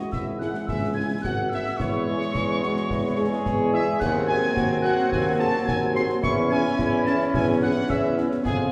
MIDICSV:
0, 0, Header, 1, 8, 480
1, 0, Start_track
1, 0, Key_signature, 4, "minor"
1, 0, Tempo, 555042
1, 589, Time_signature, 2, 2, 24, 8
1, 7540, End_track
2, 0, Start_track
2, 0, Title_t, "Piccolo"
2, 0, Program_c, 0, 72
2, 103, Note_on_c, 0, 88, 102
2, 158, Note_off_c, 0, 88, 0
2, 336, Note_on_c, 0, 90, 91
2, 392, Note_off_c, 0, 90, 0
2, 574, Note_on_c, 0, 88, 97
2, 804, Note_off_c, 0, 88, 0
2, 814, Note_on_c, 0, 92, 107
2, 1044, Note_off_c, 0, 92, 0
2, 1051, Note_on_c, 0, 90, 108
2, 1293, Note_on_c, 0, 88, 102
2, 1306, Note_off_c, 0, 90, 0
2, 1529, Note_on_c, 0, 85, 127
2, 1542, Note_off_c, 0, 88, 0
2, 3219, Note_off_c, 0, 85, 0
2, 3226, Note_on_c, 0, 88, 107
2, 3280, Note_off_c, 0, 88, 0
2, 3456, Note_on_c, 0, 90, 127
2, 3686, Note_off_c, 0, 90, 0
2, 3689, Note_on_c, 0, 92, 121
2, 4145, Note_off_c, 0, 92, 0
2, 4167, Note_on_c, 0, 90, 127
2, 4408, Note_on_c, 0, 92, 127
2, 4421, Note_off_c, 0, 90, 0
2, 4659, Note_off_c, 0, 92, 0
2, 4666, Note_on_c, 0, 93, 127
2, 4721, Note_off_c, 0, 93, 0
2, 4888, Note_on_c, 0, 92, 127
2, 5120, Note_off_c, 0, 92, 0
2, 5154, Note_on_c, 0, 96, 127
2, 5208, Note_off_c, 0, 96, 0
2, 5391, Note_on_c, 0, 97, 127
2, 5445, Note_off_c, 0, 97, 0
2, 5624, Note_on_c, 0, 92, 127
2, 6072, Note_off_c, 0, 92, 0
2, 6111, Note_on_c, 0, 93, 127
2, 6164, Note_off_c, 0, 93, 0
2, 6350, Note_on_c, 0, 92, 127
2, 6404, Note_off_c, 0, 92, 0
2, 6596, Note_on_c, 0, 90, 127
2, 6649, Note_off_c, 0, 90, 0
2, 6828, Note_on_c, 0, 88, 126
2, 6882, Note_off_c, 0, 88, 0
2, 7310, Note_on_c, 0, 80, 113
2, 7532, Note_off_c, 0, 80, 0
2, 7540, End_track
3, 0, Start_track
3, 0, Title_t, "Trumpet section"
3, 0, Program_c, 1, 61
3, 0, Note_on_c, 1, 75, 95
3, 95, Note_off_c, 1, 75, 0
3, 103, Note_on_c, 1, 76, 107
3, 213, Note_off_c, 1, 76, 0
3, 350, Note_on_c, 1, 78, 107
3, 573, Note_off_c, 1, 78, 0
3, 586, Note_on_c, 1, 76, 114
3, 810, Note_off_c, 1, 76, 0
3, 819, Note_on_c, 1, 80, 110
3, 929, Note_off_c, 1, 80, 0
3, 1068, Note_on_c, 1, 78, 117
3, 1292, Note_off_c, 1, 78, 0
3, 1318, Note_on_c, 1, 76, 116
3, 1537, Note_off_c, 1, 76, 0
3, 1548, Note_on_c, 1, 73, 127
3, 3194, Note_off_c, 1, 73, 0
3, 3225, Note_on_c, 1, 76, 127
3, 3450, Note_off_c, 1, 76, 0
3, 3456, Note_on_c, 1, 78, 127
3, 3699, Note_on_c, 1, 80, 127
3, 3702, Note_off_c, 1, 78, 0
3, 4150, Note_off_c, 1, 80, 0
3, 4173, Note_on_c, 1, 78, 127
3, 4416, Note_on_c, 1, 80, 127
3, 4421, Note_off_c, 1, 78, 0
3, 4527, Note_off_c, 1, 80, 0
3, 4657, Note_on_c, 1, 81, 127
3, 4886, Note_off_c, 1, 81, 0
3, 4899, Note_on_c, 1, 80, 127
3, 5009, Note_off_c, 1, 80, 0
3, 5139, Note_on_c, 1, 84, 127
3, 5249, Note_off_c, 1, 84, 0
3, 5381, Note_on_c, 1, 85, 127
3, 5491, Note_off_c, 1, 85, 0
3, 5627, Note_on_c, 1, 80, 127
3, 6074, Note_off_c, 1, 80, 0
3, 6097, Note_on_c, 1, 81, 127
3, 6207, Note_off_c, 1, 81, 0
3, 6347, Note_on_c, 1, 80, 127
3, 6455, Note_off_c, 1, 80, 0
3, 6586, Note_on_c, 1, 78, 127
3, 6810, Note_off_c, 1, 78, 0
3, 6825, Note_on_c, 1, 76, 127
3, 7066, Note_off_c, 1, 76, 0
3, 7296, Note_on_c, 1, 68, 127
3, 7406, Note_off_c, 1, 68, 0
3, 7540, End_track
4, 0, Start_track
4, 0, Title_t, "Euphonium"
4, 0, Program_c, 2, 58
4, 0, Note_on_c, 2, 66, 94
4, 109, Note_on_c, 2, 64, 92
4, 122, Note_off_c, 2, 66, 0
4, 583, Note_off_c, 2, 64, 0
4, 588, Note_on_c, 2, 68, 97
4, 944, Note_off_c, 2, 68, 0
4, 1078, Note_on_c, 2, 66, 101
4, 1364, Note_off_c, 2, 66, 0
4, 1545, Note_on_c, 2, 64, 99
4, 2028, Note_on_c, 2, 61, 94
4, 2041, Note_off_c, 2, 64, 0
4, 2271, Note_on_c, 2, 66, 95
4, 2284, Note_off_c, 2, 61, 0
4, 2515, Note_on_c, 2, 64, 93
4, 2528, Note_off_c, 2, 66, 0
4, 2733, Note_off_c, 2, 64, 0
4, 2738, Note_on_c, 2, 68, 127
4, 3909, Note_off_c, 2, 68, 0
4, 3941, Note_on_c, 2, 66, 127
4, 5350, Note_off_c, 2, 66, 0
4, 5380, Note_on_c, 2, 64, 121
4, 5830, Note_off_c, 2, 64, 0
4, 5859, Note_on_c, 2, 64, 127
4, 6665, Note_off_c, 2, 64, 0
4, 6812, Note_on_c, 2, 61, 106
4, 7109, Note_off_c, 2, 61, 0
4, 7305, Note_on_c, 2, 65, 125
4, 7540, Note_off_c, 2, 65, 0
4, 7540, End_track
5, 0, Start_track
5, 0, Title_t, "French horn section"
5, 0, Program_c, 3, 60
5, 355, Note_on_c, 3, 56, 79
5, 355, Note_on_c, 3, 64, 81
5, 356, Note_on_c, 3, 68, 80
5, 440, Note_off_c, 3, 56, 0
5, 440, Note_off_c, 3, 64, 0
5, 441, Note_off_c, 3, 68, 0
5, 829, Note_on_c, 3, 64, 75
5, 832, Note_on_c, 3, 56, 73
5, 832, Note_on_c, 3, 68, 83
5, 915, Note_off_c, 3, 64, 0
5, 917, Note_off_c, 3, 68, 0
5, 918, Note_off_c, 3, 56, 0
5, 1310, Note_on_c, 3, 56, 81
5, 1313, Note_on_c, 3, 64, 83
5, 1313, Note_on_c, 3, 68, 79
5, 1396, Note_off_c, 3, 56, 0
5, 1398, Note_off_c, 3, 64, 0
5, 1399, Note_off_c, 3, 68, 0
5, 1786, Note_on_c, 3, 64, 86
5, 1791, Note_on_c, 3, 56, 82
5, 1792, Note_on_c, 3, 68, 86
5, 1873, Note_off_c, 3, 64, 0
5, 1877, Note_off_c, 3, 56, 0
5, 1878, Note_off_c, 3, 68, 0
5, 2270, Note_on_c, 3, 56, 89
5, 2274, Note_on_c, 3, 64, 85
5, 2274, Note_on_c, 3, 68, 82
5, 2356, Note_off_c, 3, 56, 0
5, 2359, Note_off_c, 3, 68, 0
5, 2360, Note_off_c, 3, 64, 0
5, 2745, Note_on_c, 3, 68, 88
5, 2746, Note_on_c, 3, 56, 83
5, 2749, Note_on_c, 3, 64, 86
5, 2833, Note_off_c, 3, 56, 0
5, 2833, Note_off_c, 3, 68, 0
5, 2836, Note_off_c, 3, 64, 0
5, 3224, Note_on_c, 3, 56, 102
5, 3225, Note_on_c, 3, 68, 92
5, 3226, Note_on_c, 3, 64, 87
5, 3311, Note_off_c, 3, 56, 0
5, 3313, Note_off_c, 3, 64, 0
5, 3313, Note_off_c, 3, 68, 0
5, 3706, Note_on_c, 3, 66, 99
5, 3708, Note_on_c, 3, 60, 89
5, 3710, Note_on_c, 3, 68, 96
5, 3793, Note_off_c, 3, 66, 0
5, 3794, Note_off_c, 3, 60, 0
5, 3796, Note_off_c, 3, 68, 0
5, 4192, Note_on_c, 3, 68, 97
5, 4197, Note_on_c, 3, 60, 94
5, 4197, Note_on_c, 3, 66, 108
5, 4278, Note_off_c, 3, 68, 0
5, 4281, Note_off_c, 3, 60, 0
5, 4282, Note_off_c, 3, 66, 0
5, 4667, Note_on_c, 3, 60, 110
5, 4671, Note_on_c, 3, 66, 94
5, 4671, Note_on_c, 3, 68, 107
5, 4754, Note_off_c, 3, 60, 0
5, 4756, Note_off_c, 3, 68, 0
5, 4757, Note_off_c, 3, 66, 0
5, 5136, Note_on_c, 3, 66, 103
5, 5138, Note_on_c, 3, 60, 103
5, 5142, Note_on_c, 3, 68, 101
5, 5225, Note_off_c, 3, 66, 0
5, 5227, Note_off_c, 3, 60, 0
5, 5230, Note_off_c, 3, 68, 0
5, 5629, Note_on_c, 3, 64, 99
5, 5634, Note_on_c, 3, 68, 102
5, 5635, Note_on_c, 3, 61, 101
5, 5715, Note_off_c, 3, 64, 0
5, 5719, Note_off_c, 3, 68, 0
5, 5720, Note_off_c, 3, 61, 0
5, 6112, Note_on_c, 3, 61, 104
5, 6113, Note_on_c, 3, 68, 95
5, 6116, Note_on_c, 3, 64, 101
5, 6198, Note_off_c, 3, 61, 0
5, 6198, Note_off_c, 3, 68, 0
5, 6201, Note_off_c, 3, 64, 0
5, 6590, Note_on_c, 3, 68, 99
5, 6597, Note_on_c, 3, 61, 94
5, 6597, Note_on_c, 3, 64, 103
5, 6675, Note_off_c, 3, 68, 0
5, 6681, Note_off_c, 3, 61, 0
5, 6681, Note_off_c, 3, 64, 0
5, 7069, Note_on_c, 3, 68, 101
5, 7072, Note_on_c, 3, 61, 100
5, 7076, Note_on_c, 3, 64, 95
5, 7155, Note_off_c, 3, 68, 0
5, 7157, Note_off_c, 3, 61, 0
5, 7161, Note_off_c, 3, 64, 0
5, 7540, End_track
6, 0, Start_track
6, 0, Title_t, "Trombone section"
6, 0, Program_c, 4, 61
6, 0, Note_on_c, 4, 52, 90
6, 0, Note_on_c, 4, 56, 82
6, 1396, Note_off_c, 4, 52, 0
6, 1396, Note_off_c, 4, 56, 0
6, 1543, Note_on_c, 4, 52, 102
6, 1554, Note_on_c, 4, 56, 102
6, 3432, Note_off_c, 4, 52, 0
6, 3437, Note_off_c, 4, 56, 0
6, 3461, Note_on_c, 4, 54, 116
6, 3468, Note_on_c, 4, 60, 120
6, 5350, Note_off_c, 4, 54, 0
6, 5353, Note_off_c, 4, 60, 0
6, 5381, Note_on_c, 4, 52, 127
6, 5385, Note_on_c, 4, 61, 127
6, 7269, Note_off_c, 4, 52, 0
6, 7271, Note_off_c, 4, 61, 0
6, 7299, Note_on_c, 4, 59, 109
6, 7305, Note_on_c, 4, 49, 122
6, 7540, Note_off_c, 4, 49, 0
6, 7540, Note_off_c, 4, 59, 0
6, 7540, End_track
7, 0, Start_track
7, 0, Title_t, "Tuba"
7, 0, Program_c, 5, 58
7, 107, Note_on_c, 5, 32, 86
7, 508, Note_off_c, 5, 32, 0
7, 591, Note_on_c, 5, 37, 99
7, 990, Note_off_c, 5, 37, 0
7, 1070, Note_on_c, 5, 32, 98
7, 1470, Note_off_c, 5, 32, 0
7, 1552, Note_on_c, 5, 40, 99
7, 1951, Note_off_c, 5, 40, 0
7, 2034, Note_on_c, 5, 40, 109
7, 2432, Note_off_c, 5, 40, 0
7, 2505, Note_on_c, 5, 40, 108
7, 2907, Note_off_c, 5, 40, 0
7, 2986, Note_on_c, 5, 40, 115
7, 3387, Note_off_c, 5, 40, 0
7, 3465, Note_on_c, 5, 39, 123
7, 3867, Note_off_c, 5, 39, 0
7, 3948, Note_on_c, 5, 39, 114
7, 4299, Note_off_c, 5, 39, 0
7, 4419, Note_on_c, 5, 39, 127
7, 4824, Note_off_c, 5, 39, 0
7, 4910, Note_on_c, 5, 39, 114
7, 5309, Note_off_c, 5, 39, 0
7, 5391, Note_on_c, 5, 40, 127
7, 5789, Note_off_c, 5, 40, 0
7, 5865, Note_on_c, 5, 40, 115
7, 6266, Note_off_c, 5, 40, 0
7, 6351, Note_on_c, 5, 40, 125
7, 6749, Note_off_c, 5, 40, 0
7, 6833, Note_on_c, 5, 40, 116
7, 7230, Note_off_c, 5, 40, 0
7, 7308, Note_on_c, 5, 41, 113
7, 7540, Note_off_c, 5, 41, 0
7, 7540, End_track
8, 0, Start_track
8, 0, Title_t, "Drums"
8, 111, Note_on_c, 9, 35, 82
8, 111, Note_on_c, 9, 38, 76
8, 198, Note_off_c, 9, 35, 0
8, 198, Note_off_c, 9, 38, 0
8, 358, Note_on_c, 9, 38, 62
8, 444, Note_off_c, 9, 38, 0
8, 472, Note_on_c, 9, 38, 61
8, 558, Note_off_c, 9, 38, 0
8, 592, Note_on_c, 9, 35, 92
8, 592, Note_on_c, 9, 38, 69
8, 679, Note_off_c, 9, 35, 0
8, 679, Note_off_c, 9, 38, 0
8, 1074, Note_on_c, 9, 35, 87
8, 1074, Note_on_c, 9, 38, 80
8, 1160, Note_off_c, 9, 35, 0
8, 1160, Note_off_c, 9, 38, 0
8, 1314, Note_on_c, 9, 38, 68
8, 1401, Note_off_c, 9, 38, 0
8, 1437, Note_on_c, 9, 38, 59
8, 1523, Note_off_c, 9, 38, 0
8, 1554, Note_on_c, 9, 35, 80
8, 1554, Note_on_c, 9, 38, 79
8, 1554, Note_on_c, 9, 49, 35
8, 1640, Note_off_c, 9, 35, 0
8, 1640, Note_off_c, 9, 38, 0
8, 1640, Note_off_c, 9, 49, 0
8, 1915, Note_on_c, 9, 38, 59
8, 2001, Note_off_c, 9, 38, 0
8, 2031, Note_on_c, 9, 35, 76
8, 2031, Note_on_c, 9, 38, 79
8, 2118, Note_off_c, 9, 35, 0
8, 2118, Note_off_c, 9, 38, 0
8, 2274, Note_on_c, 9, 38, 63
8, 2361, Note_off_c, 9, 38, 0
8, 2392, Note_on_c, 9, 38, 64
8, 2478, Note_off_c, 9, 38, 0
8, 2513, Note_on_c, 9, 35, 86
8, 2513, Note_on_c, 9, 38, 66
8, 2600, Note_off_c, 9, 35, 0
8, 2600, Note_off_c, 9, 38, 0
8, 2993, Note_on_c, 9, 35, 85
8, 2993, Note_on_c, 9, 38, 74
8, 3079, Note_off_c, 9, 35, 0
8, 3079, Note_off_c, 9, 38, 0
8, 3473, Note_on_c, 9, 35, 93
8, 3473, Note_on_c, 9, 38, 89
8, 3473, Note_on_c, 9, 49, 65
8, 3559, Note_off_c, 9, 35, 0
8, 3559, Note_off_c, 9, 38, 0
8, 3559, Note_off_c, 9, 49, 0
8, 3832, Note_on_c, 9, 38, 57
8, 3918, Note_off_c, 9, 38, 0
8, 3951, Note_on_c, 9, 35, 79
8, 3951, Note_on_c, 9, 38, 86
8, 4037, Note_off_c, 9, 35, 0
8, 4037, Note_off_c, 9, 38, 0
8, 4195, Note_on_c, 9, 38, 65
8, 4282, Note_off_c, 9, 38, 0
8, 4311, Note_on_c, 9, 38, 58
8, 4398, Note_off_c, 9, 38, 0
8, 4434, Note_on_c, 9, 35, 92
8, 4434, Note_on_c, 9, 38, 74
8, 4520, Note_off_c, 9, 35, 0
8, 4520, Note_off_c, 9, 38, 0
8, 4913, Note_on_c, 9, 35, 87
8, 4913, Note_on_c, 9, 38, 85
8, 4999, Note_off_c, 9, 35, 0
8, 4999, Note_off_c, 9, 38, 0
8, 5152, Note_on_c, 9, 38, 66
8, 5239, Note_off_c, 9, 38, 0
8, 5271, Note_on_c, 9, 38, 57
8, 5358, Note_off_c, 9, 38, 0
8, 5392, Note_on_c, 9, 35, 91
8, 5392, Note_on_c, 9, 38, 83
8, 5392, Note_on_c, 9, 49, 34
8, 5479, Note_off_c, 9, 35, 0
8, 5479, Note_off_c, 9, 38, 0
8, 5479, Note_off_c, 9, 49, 0
8, 5755, Note_on_c, 9, 38, 58
8, 5842, Note_off_c, 9, 38, 0
8, 5873, Note_on_c, 9, 35, 80
8, 5873, Note_on_c, 9, 38, 80
8, 5959, Note_off_c, 9, 35, 0
8, 5959, Note_off_c, 9, 38, 0
8, 6112, Note_on_c, 9, 38, 67
8, 6198, Note_off_c, 9, 38, 0
8, 6232, Note_on_c, 9, 38, 59
8, 6318, Note_off_c, 9, 38, 0
8, 6349, Note_on_c, 9, 35, 103
8, 6349, Note_on_c, 9, 38, 78
8, 6435, Note_off_c, 9, 35, 0
8, 6435, Note_off_c, 9, 38, 0
8, 6831, Note_on_c, 9, 35, 81
8, 6831, Note_on_c, 9, 38, 85
8, 6917, Note_off_c, 9, 35, 0
8, 6917, Note_off_c, 9, 38, 0
8, 7073, Note_on_c, 9, 38, 69
8, 7159, Note_off_c, 9, 38, 0
8, 7191, Note_on_c, 9, 38, 63
8, 7278, Note_off_c, 9, 38, 0
8, 7311, Note_on_c, 9, 35, 93
8, 7311, Note_on_c, 9, 38, 91
8, 7311, Note_on_c, 9, 49, 33
8, 7398, Note_off_c, 9, 35, 0
8, 7398, Note_off_c, 9, 38, 0
8, 7398, Note_off_c, 9, 49, 0
8, 7540, End_track
0, 0, End_of_file